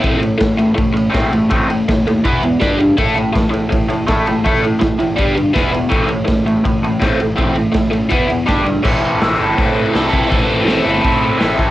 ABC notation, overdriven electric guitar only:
X:1
M:4/4
L:1/8
Q:1/4=164
K:Am
V:1 name="Overdriven electric guitar"
[A,,A,C] [A,,A,] [A,,A,] [A,,A,] [A,,A,] [A,,A,] [A,,A,C] [A,,A,] | [A,,A,C] [A,,A,] [A,,A,] [A,,A,] [E,B,E] [E,B,] [G,DG] [G,D] | [A,EA] [A,E] [A,E] [A,E] [A,E] [A,E] [A,EA] [A,E] | [A,EA] [A,E] [A,E] [A,E] [G,DG] [G,D] [E,B,E] [E,B,] |
[A,,A,C] [A,,A,] [A,,A,] [A,,A,] [A,,A,] [A,,A,] [A,,A,C] [A,,A,] | [A,,A,C] [A,,A,] [A,,A,] [A,,A,] [E,B,E] [E,B,] [G,DG] [G,D] | [A,,E,CEA]2 [A,,E,CEA] [CEA]3 [E,CEA] [CEA] | [A,,E,CEA]2 [A,,E,CEA] [CEA]3 [E,CEA] [CEA] |]